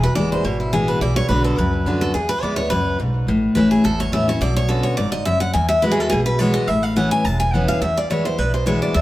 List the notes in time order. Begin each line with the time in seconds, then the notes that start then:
Already playing: E2
0.03 B4
0.15 F#1 E3 G#3 B3 E4 D5
0.32 C5
0.44 G#1 B2 C#5
0.60 E4
0.72 A1 E3 G#3 B3 E4 G#4
0.88 B4
1.00 B1 B2 D5
1.16 C#5
1.29 B1 D3 B3 D4 F#4 B4
1.44 A4
1.58 C#2 F#2 B4
1.86 D2 D3 B3 D4 F#4
2.01 A4
2.14 E2 G#4
2.29 B4
2.42 D2 E3 G#3 B3 E4 D5
2.56 B3 E4 C#5
2.70 C#2 F#2 B4
2.98 B1 G#2
3.27 A1 A2
3.55 F#1 E3 A3 C#4 E4 B4
3.71 G#4
3.84 G#1 E2 A4
4.00 C#5
4.12 A1 E3 A3 C#4 E4 E5
4.28 C#4 E4 C#5
4.40 B1 B2 D5
4.56 C#5
4.68 D3 B3 C#4 F#4 A4
4.83 C#5
4.97 F#1 G#2 D5
5.12 D#5
5.25 F#2 E5
5.40 F#5
5.54 E2 G#5
5.69 E5
5.82 E3 G#3 B3 F#4 B4
5.91 G#4
6.00 A4
6.10 B1 B2 G#4
6.26 B4
6.39 E3 G#3 B3 F#4 C#5
6.54 D#5
6.67 A1 A2 E5
6.83 F5
6.96 E3 B3 C#4 E4 F#5
7.11 G#5
7.24 E1 E2 A5
7.40 G#5
7.53 E3 B3 C#4 E4 F#5
7.68 F5
7.81 E2 E5
7.97 D5
8.10 E3 G#3 B3 E4 C#5
8.25 B3 E4 C5
8.38 B1 B2 B4
8.54 C5
8.66 E3 G#3 B3 E4 C#5
8.82 D5
8.94 E2 E5